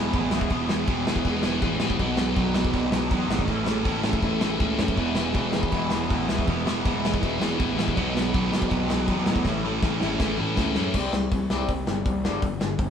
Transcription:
Already playing: E1 E2 B2 E3 G#3 B3 E4 G#4
0.13 A1 E2 B2 E3 G#3 B3 E4 G#4, kick, crash
0.31 C#2 E2 B2 E3 G#3 B3 E4 G#4, snare
0.41 kick
0.50 E1 E2 B2 E3 G#3 B3 E4 G#4, kick, crash
0.69 E2 B2 E3 G#3 B3 E4 G#4, snare
0.87 E1 E2 B2 E3 G#3 B3 E4 G#4, kick, crash
1.06 E1 E2 B2 E3 G#3 B3 E4 G#4, snare
1.16 kick
1.25 E1 E2 B2 E3 G#3 B3 E4 G#4, kick, crash
1.43 E1 E2 B2 E3 G#3 B3 E4 G#4, snare
1.62 A1 E2 B2 E3 G#3 B3 E4 G#4, kick, crash
1.80 A1 E2 B2 E3 G#3 B3 E4 G#4, snare
1.90 kick
1.98 B1 B2 D#3 F#3 B3 D#4, kick, crash
2.17 B2 D#3 F#3 B3 D#4, snare
2.35 B1 B2 D#3 F#3 B3 D#4, kick, crash
2.55 B1 B2 D#3 F#3 B3 D#4, snare
2.65 kick
2.74 B1 B2 D#3 F#3 B3 D#4, kick, crash
2.92 B1 B2 D#3 F#3 B3 D#4, snare
3.11 E2 B2 D#3 F#3 B3 D#4, kick, crash
3.29 G#1 B2 D#3 F#3 B3 D#4, snare
3.39 kick
3.48 A1 A2 E3 A3 C#4 E4, kick, crash
3.66 A2 E3 A3 C#4 E4, snare
3.85 A1 A2 E3 A3 C#4 E4, kick, crash
4.03 A1 A2 E3 A3 C#4 E4, snare
4.13 kick
4.22 A1 A2 E3 A3 C#4 E4, kick, crash
4.40 A1 A2 E3 A3 C#4 E4, snare
4.59 C#2 A2 E3 A3 C#4 E4, kick, crash
4.79 F#2 A2 E3 A3 C#4 E4, snare
4.88 kick
4.95 E1 E2 B2 E3 G#3 B3 E4, kick, crash
5.15 E2 B2 E3 G#3 B3 E4, snare
5.32 E1 E2 B2 E3, kick, crash
5.36 G#3 B3 E4
5.52 E1 E2 B2 E3 G#3 B3 E4, snare
5.63 kick
5.70 E1 E2 B2 E3, kick, crash
5.74 G#3 B3 E4
5.89 E1 E2 B2 E3, snare
5.93 G#3 B3 E4
6.09 A1 E2 B2 E3 G#3 B3 E4, kick, crash
6.27 C#2 E2 B2 E3 G#3 B3, snare
6.32 E4
6.38 kick
6.46 E1 E2 B2 E3 G#3 B3 E4, kick, crash
6.66 E2 B2 E3 G#3 B3 E4, snare
6.84 E1 E2 B2 E3 G#3 B3 E4, kick, crash
7.03 E1 E2 B2 E3 G#3 B3 E4, snare
7.14 kick
7.21 E1 E2 B2 E3 G#3 B3 E4, kick, crash
7.39 E1 E2 B2 E3 G#3 B3 E4, snare
7.58 A1 E2 B2 E3 G#3 B3 E4, kick, crash
7.76 A1 E2 B2 E3 G#3 B3 E4, snare
7.88 kick
7.97 B1 B2 D#3 F#3 B3 D#4, kick, crash
8.14 B2 D#3 F#3 B3 D#4, snare
8.32 B1 B2 D#3 F#3 B3 D#4, kick, crash
8.50 B1 B2 D#3 F#3 B3 D#4, snare
8.62 kick
8.68 B1 B2 D#3 F#3 B3 D#4, kick, crash
8.86 B2 D#3 F#3 B3 D#4, snare
8.90 B1
9.06 E2 B2 D#3 F#3 B3 D#4, kick, crash
9.24 B2 D#3 F#3 B3 D#4, snare
9.28 A2
9.36 kick
9.44 A1 A2 E3 A3 C#4 E4, kick, snare
9.63 A2 E3 A3 C#4 E4
9.82 A1 A2 E3 A3 C#4 E4, kick, snare
10.00 A1 A2 E3 A3 C#4 E4, snare
10.20 A1 A2 E3 A3 C#4 E4, kick, snare
10.38 A1 A2 E3 A3 C#4 E4
10.56 C#2 A2 E3 A3 C#4 E4, kick, snare
10.75 F#2 A2 E3 A3 C#4 E4, snare
10.94 C2 C3 G3 C4, kick, crash
11.12 C2 C3 G3, snare
11.31 C2 C3 G3, kick, open hi-hat
11.50 C2 C3 G3 C4, snare
11.68 C2 C3 G3, kick, open hi-hat
11.87 G1 C3 G3, snare
12.05 C2 C3 G3, kick, open hi-hat
12.24 G1 G2 D3 G3, snare
12.42 G1 G2 D3, kick, open hi-hat
12.59 G1 G2 D3, snare
12.78 G1 G2 D3, kick, open hi-hat

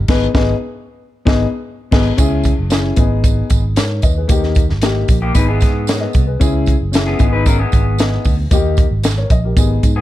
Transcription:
0.08 G#1 B3 D#4 G#4 B4, kick, snare, crash
0.34 G#1 B3 D#4 G#4 B4, kick, snare
1.25 G#1 B3 D#4 G#4 B4, kick, snare
1.91 G#1 B3 D#4 G#4 B4, kick, snare, crash
2.17 C#2 C#4 E4 G#4, kick, closed hi-hat, tambourine
2.44 kick, closed hi-hat, tambourine
2.58 F#1
2.70 C#4 E4 G#4, snare, closed hi-hat, tambourine
2.96 G#1 B3 D#4 G#4, kick, closed hi-hat, tambourine
3.24 kick, closed hi-hat, tambourine
3.50 G#1, kick, closed hi-hat, tambourine
3.76 G#2 A#4 C#5, snare, closed hi-hat, tambourine
4.02 D#2 B4 D#5, kick, closed hi-hat, tambourine
4.17 G#4 B4
4.28 D#2 A#3 D#4 G4, kick, closed hi-hat, tambourine
4.43 snare
4.55 kick, closed hi-hat, tambourine
4.70 G#1, snare
4.81 A#3 D#4 G4, snare, closed hi-hat, tambourine
5.08 A#1, kick, closed hi-hat, tambourine
5.22 A#3 G4
5.34 G#1 B3 D#4 G#4 B4, kick, closed hi-hat, tambourine
5.48 B3 G#4
5.61 G#2, kick, snare, closed hi-hat, tambourine
5.87 A#4 C#5, snare, closed hi-hat, tambourine
6.00 B4 D#5
6.13 C2, kick, closed hi-hat, tambourine
6.27 G#4 B4
6.40 C#2 C#4 E4 G#4, kick, closed hi-hat, tambourine
6.66 kick, closed hi-hat, tambourine
6.81 F#1
6.92 C#4 E4 G#4, snare, closed hi-hat, tambourine
7.07 B3 G#4
7.18 G#1 B3 D#4 G#4, kick, closed hi-hat, tambourine
7.33 D#4 B4
7.46 C#4 A#4, kick, closed hi-hat, tambourine
7.59 B3 G#4
7.72 G#1, kick, closed hi-hat, tambourine
7.98 B3 D#4 G#4, snare, closed hi-hat, tambourine
8.25 D2, kick, open hi-hat, tambourine
8.51 D#2 A#3 D#4 G4, kick, closed hi-hat, tambourine
8.77 kick, closed hi-hat, tambourine
8.91 G#1
9.04 snare, closed hi-hat, tambourine
9.17 A#4 C#5
9.30 A#1 D#5, kick, closed hi-hat, tambourine
9.44 G4 A#4
9.56 G#1 B3 D#4 G#4, kick, closed hi-hat, tambourine
9.83 G#2, kick, closed hi-hat, tambourine
9.96 B3 G#4

